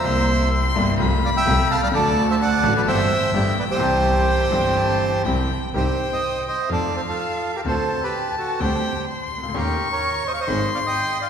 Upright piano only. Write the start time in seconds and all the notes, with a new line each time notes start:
0.02 C2 C3 G3 A#3
0.07 E4
0.75 G1 G2 C3 G3 A#3 E4
0.99 C2 C3 F3 A3 F4
1.45 C2 C3 F3 A3 F4
1.75 B1
1.81 C2
1.87 C#2
1.92 D2 D3 F#3 A3
1.96 F#4
2.63 A1 A2 D3 F#3 A3 F#4
2.87 G1 G2 E3 G3 C4 G4
3.34 G1 G2 D3 G3 B3 G4
3.63 A1
3.69 A#1
3.74 B1 E3
3.79 C2 C3 G3 C4 G4
4.50 G1 G2 E3 G3 C4
4.54 G4
5.25 C2 C3 E3 G3 C4 G4
5.74 C2 C3 D#3 G3 C4 G4
6.69 F2 D#3 F3 A3 C4 F4
7.65 D2 D3 A3 C4 F#4
8.60 D2 D3 G3 C4 G4
9.38 C2
9.43 C#2
9.49 D2
9.54 D#2 D#3 A#3 C#4 G4
10.47 G#1 G#2 D#3 G#3 C4 G#4